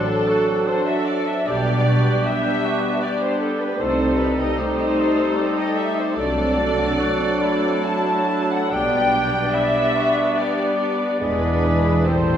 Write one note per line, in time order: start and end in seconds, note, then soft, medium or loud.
0.00 0.66 F#3 medium
0.00 1.31 F#3 medium
0.00 0.30 D4 medium
0.00 0.66 D4 medium
0.00 1.44 D4 medium
0.00 3.51 D4 medium
0.00 0.66 A4 medium
0.00 0.67 A4 medium
0.00 0.68 A4 medium
0.00 1.47 A4 medium
0.06 0.27 C4 soft
0.26 0.47 A3 medium
0.26 0.69 F#4 medium
0.47 0.67 C4 medium
0.67 1.46 F#3 medium
0.67 1.46 D4 medium
0.67 0.88 D4 medium
0.67 1.47 A4 medium
0.67 1.46 A4 medium
0.67 0.87 C5 medium
0.86 1.07 F#4 medium
0.86 1.07 E5 medium
1.06 1.27 D4 medium
1.06 1.28 D5 medium
1.06 1.27 D5 medium
1.26 1.48 C4 soft
1.26 1.48 E5 medium
1.26 1.47 E5 medium
1.45 2.13 B1 medium
1.45 2.14 B2 medium
1.45 3.02 G3 medium
1.45 1.66 G3 medium
1.45 5.87 G3 medium
1.45 3.76 B3 medium
1.45 2.99 D4 medium
1.45 3.76 D4 medium
1.45 3.02 G4 medium
1.45 1.89 G4 medium
1.45 2.08 G4 medium
1.45 2.25 D5 medium
1.45 2.26 D5 medium
1.69 1.88 B3 medium
1.88 2.08 D4 medium
1.88 2.28 F#4 medium
2.09 2.28 G4 soft
2.24 2.66 G4 medium
2.24 2.77 E5 medium
2.24 3.02 E5 medium
2.29 2.47 D4 medium
2.47 2.65 B3 medium
2.65 2.85 G3 medium
2.65 3.05 F#4 medium
2.85 3.03 B3 medium
3.02 3.63 G3 medium
3.02 3.63 D4 medium
3.02 3.23 D4 medium
3.02 3.54 G4 medium
3.02 3.78 G4 medium
3.02 3.21 D5 medium
3.02 3.25 D5 medium
3.22 3.42 G4 medium
3.22 3.41 C5 medium
3.22 3.43 C5 medium
3.39 3.61 D4 medium
3.39 3.59 A4 medium
3.39 3.62 A4 medium
3.60 3.81 B3 soft
3.60 3.80 B4 medium
3.60 3.81 B4 medium
3.79 4.46 C2 medium
3.79 4.46 C3 medium
3.79 4.57 G3 medium
3.79 8.68 A3 medium
3.79 3.99 A3 medium
3.79 6.17 D#4 medium
3.79 4.58 D#4 medium
3.79 6.14 D#4 medium
3.79 4.60 A4 medium
3.79 4.42 A4 medium
3.79 8.72 A4 medium
3.79 4.19 C5 medium
3.99 4.19 C4 medium
4.18 4.39 D#4 medium
4.18 4.39 B4 medium
4.18 4.42 B4 medium
4.38 4.59 G4 soft
4.38 4.58 D#5 medium
4.38 4.62 D#5 medium
4.58 6.14 G3 medium
4.58 4.79 D#4 medium
4.58 6.14 D#4 medium
4.58 5.01 G4 medium
4.58 6.14 A4 medium
4.58 5.57 C5 medium
4.58 5.61 C5 medium
4.79 4.99 C4 medium
4.99 5.18 A3 medium
4.99 5.39 D#4 medium
5.19 5.38 C4 soft
5.38 5.58 D#4 medium
5.38 6.16 G4 medium
5.58 5.78 G4 medium
5.58 5.78 D#5 medium
5.58 5.81 D#5 medium
5.77 5.98 D#4 medium
5.77 5.97 E5 medium
5.77 6.01 E5 medium
5.98 6.17 C4 soft
5.98 6.17 C5 medium
6.16 6.84 C2 medium
6.16 6.84 C3 medium
6.16 8.67 F#3 medium
6.16 8.74 F#3 medium
6.16 6.36 A3 medium
6.16 11.17 D4 medium
6.16 11.05 D4 medium
6.16 7.00 A4 medium
6.16 8.68 A4 medium
6.16 7.84 D5 loud
6.16 7.55 D5 medium
6.38 6.57 C4 medium
6.58 6.77 D4 medium
6.78 6.98 F#4 medium
6.99 7.20 D4 medium
6.99 7.43 F#4 medium
7.20 7.42 C4 medium
7.42 7.66 A3 medium
7.42 8.71 E4 medium
7.66 7.88 C4 soft
7.87 8.10 D4 medium
7.87 8.50 A5 medium
7.87 8.53 A5 medium
8.10 8.30 F#4 soft
8.31 8.51 D4 soft
8.51 8.72 C4 soft
8.51 8.74 F#5 medium
8.51 8.72 F#5 medium
8.72 9.41 B1 medium
8.72 9.40 B2 medium
8.72 11.20 G3 medium
8.72 8.91 G3 soft
8.72 11.05 G3 medium
8.72 12.07 B3 medium
8.72 9.56 D4 medium
8.72 9.33 G4 medium
8.72 11.17 D5 medium
8.72 9.53 G5 medium
8.72 9.56 G5 medium
8.93 9.13 B3 soft
9.14 9.34 D4 medium
9.34 9.55 G4 soft
9.54 9.76 D4 medium
9.54 9.98 E4 medium
9.54 10.41 E5 medium
9.54 10.38 E5 loud
9.77 9.97 B3 soft
9.97 10.18 G3 medium
9.97 10.40 F#4 medium
10.20 10.40 B3 soft
10.38 10.60 D4 medium
10.38 10.93 G4 medium
10.38 11.20 D5 medium
10.38 11.21 D5 medium
10.60 10.80 G4 soft
10.81 11.01 D4 medium
11.01 11.21 B3 soft
11.20 11.92 E1 medium
11.20 11.92 E2 medium
11.20 12.09 G#3 medium
11.20 11.40 G#3 soft
11.20 12.03 G#3 medium
11.20 12.05 D4 medium
11.20 12.07 D4 medium
11.20 12.03 E4 medium
11.20 12.05 G#4 soft
11.20 12.09 G#4 medium
11.20 12.05 B4 medium
11.20 12.10 B4 medium
11.20 12.03 D5 medium
11.43 11.64 B3 medium
11.63 11.85 D4 medium
11.86 12.07 E4 soft
12.06 12.37 A1 medium
12.06 12.37 A2 soft
12.06 12.37 G3 medium
12.06 12.28 G3 soft
12.06 12.37 A3 soft
12.06 12.37 C4 medium
12.06 12.37 E4 medium
12.06 12.37 G4 medium
12.06 12.37 A4 medium
12.06 12.37 C5 medium
12.31 12.37 A3 soft